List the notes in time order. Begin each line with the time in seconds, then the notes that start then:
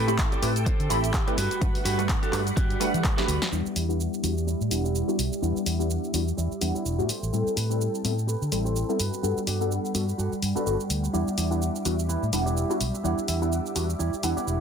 Already playing: A2 G4 A4 B4 G5
0.07 A3 C4 E4 G4 B5, closed hi-hat, shaker
0.18 kick, clap, closed hi-hat, shaker
0.32 G4 A4 D5, closed hi-hat, shaker
0.42 A2 A3 C4 E4 G4 B4, open hi-hat, shaker
0.56 closed hi-hat, shaker
0.66 G4 A4 C5, kick, closed hi-hat, shaker
0.80 D3, closed hi-hat, shaker
0.90 A1 A3 C4 E4 G4 B5, open hi-hat, shaker
1.04 closed hi-hat, shaker
1.14 kick, clap, closed hi-hat, shaker
1.27 A3 C4 E4 G4 A4 B4 D5, closed hi-hat, shaker
1.37 G2 G3 F#4 G4 B4 F#5 B5, open hi-hat, shaker
1.51 closed hi-hat, shaker
1.61 G2 G3 A3 D4 B4 F#5, kick, closed hi-hat, shaker
1.75 muted fingered electric bass stroke, open hi-hat, shaker
1.85 G2 F#4 G4 B4, open hi-hat, shaker
1.98 G3 A3 D4 B4 F#5, closed hi-hat, shaker
2.09 kick, clap, closed hi-hat, shaker
2.22 F#4 G4 A4, closed hi-hat, shaker
2.32 G2 A3 D4 F#4 G4 B4, clap, open hi-hat, shaker
2.47 closed hi-hat, shaker
2.56 G2 F#4 G4 D5, kick, closed hi-hat, shaker
2.70 closed hi-hat, shaker
2.80 G3 A3 D4 B4 F#5, open hi-hat, shaker
2.94 E3, closed hi-hat, shaker
3.04 kick, clap, closed hi-hat, shaker
3.17 A3 D4 F#4 G4 B4, snare, closed hi-hat, shaker
3.28 D2, open hi-hat, shaker
3.42 snare, closed hi-hat, shaker
3.51 E2 G3 B3 D4 E4 G4 D5 E5 F#5 D6, shaker
3.66 muted fingered electric bass stroke, shaker
3.75 E2 E4 G4 D5, open hi-hat, shaker
3.88 G3 B3 D4 E4 F#5, shaker
4.00 shaker
4.14 shaker
4.23 E2 G3 B3 D4 E4 F#4, muted clean electric guitar stroke, open hi-hat, shaker
4.38 shaker
4.47 E4 G4 D5, shaker
4.61 A2, shaker
4.70 E1 G3 B3 D4 E4 F#5, muted clean electric guitar stroke, open hi-hat, shaker
4.84 E4 G4 D5, shaker
4.95 shaker
5.08 G3 B3 D4 E4 F#4, shaker
5.19 B1, open hi-hat, shaker
5.32 muted clean electric guitar stroke, shaker
5.42 E2 G3 B3 D4 E4 G4 D5 F#5, shaker
5.56 muted fingered electric bass stroke, shaker
5.66 E2 E4 G4 D5, open hi-hat, shaker
5.79 G3 B3 D4 E4 F#5, shaker
5.90 shaker
6.04 shaker
6.13 E2 G3 B3 D4 E4 F#4, muted clean electric guitar stroke, open hi-hat, shaker
6.28 shaker
6.37 E2 E4 G4 D5, shaker
6.51 muted fingered electric bass stroke, shaker
6.61 E2 G3 B3 D4 E4 F#5, muted clean electric guitar stroke, open hi-hat, shaker
6.75 E4 G4 D5, muted fingered electric bass stroke, shaker
6.85 E1, shaker
6.98 A2 G3 B3 D4 E4 F#4, shaker
7.08 G4 A4 C5 G5, muted fingered electric bass stroke, open hi-hat, shaker
7.23 A1, shaker
7.33 A2 G3 C4 E4 A4, shaker
7.46 muted fingered electric bass stroke, shaker
7.56 A2 G4 A4 B4, open hi-hat, shaker
7.70 G3 C4 E4 A4, shaker
7.81 shaker
7.95 shaker
8.04 A2 G3 B3 C4 E4 A4, muted clean electric guitar stroke, open hi-hat, shaker
8.18 shaker
8.28 G4 A4 B4, shaker
8.42 D3, shaker
8.52 A1 G3 C4 E4 A4, muted clean electric guitar stroke, open hi-hat, shaker
8.65 G4 A4 C5, shaker
8.76 shaker
8.89 G3 B3 C4 E4 A4, shaker
8.99 G2 G3 F#4 G4 B4 F#5 B5, open hi-hat, shaker
9.13 shaker
9.23 G2 G3 B3 D4 A4 F#5, shaker
9.37 muted fingered electric bass stroke, shaker
9.47 G2 F#4 G4 D5, open hi-hat, shaker
9.60 G3 B3 D4 A4 F#5, shaker
9.72 shaker
9.85 shaker
9.94 G2 G3 B3 D4 F#4 A4, muted clean electric guitar stroke, open hi-hat, shaker
10.09 shaker
10.18 G2 F#4 G4 A4, shaker
10.32 muted fingered electric bass stroke, shaker
10.42 G2, muted clean electric guitar stroke, open hi-hat, shaker
10.55 G3 B3 D4 F#4 G4 A4 B4, muted fingered electric bass stroke, shaker
10.66 G1 G3 B3 D4 F#4 A4, shaker
10.80 shaker
10.90 D2, open hi-hat, shaker
11.03 muted clean electric guitar stroke, shaker
11.13 E2 G3 B3 D4 E4 G4 D5 E5 F#5 D6, shaker
11.27 muted fingered electric bass stroke, shaker
11.37 E2 E4 G4 D5, open hi-hat, shaker
11.50 G3 B3 D4 E4 F#5, shaker
11.62 shaker
11.76 shaker
11.85 E2 G3 B3 D4 E4 F#4, muted clean electric guitar stroke, open hi-hat, shaker
11.99 shaker
12.09 E4 G4 B4, shaker
12.23 A2, shaker
12.33 E1 G3 B3 D4 E4 F#5, muted clean electric guitar stroke, open hi-hat, shaker
12.46 E4 G4 D5, shaker
12.57 shaker
12.70 G3 B3 D4 E4 F#4, shaker
12.80 B1, open hi-hat, shaker
12.94 muted clean electric guitar stroke, shaker
13.04 E2 G3 B3 D4 E4 G4 D5 F#5, shaker
13.18 muted fingered electric bass stroke, shaker
13.28 E2 E4 G4 E5, open hi-hat, shaker
13.41 G3 B3 D4 E4 F#5, shaker
13.53 shaker
13.66 shaker
13.75 E2 G3 B3 D4 E4 F#4, muted clean electric guitar stroke, open hi-hat, shaker
13.90 shaker
13.99 E2 E4 G4 D5, shaker
14.13 muted fingered electric bass stroke, shaker
14.23 E2 G3 B3 D4 E4 F#5, muted clean electric guitar stroke, open hi-hat, shaker
14.37 E4 G4 D5, muted fingered electric bass stroke, shaker
14.47 E1, shaker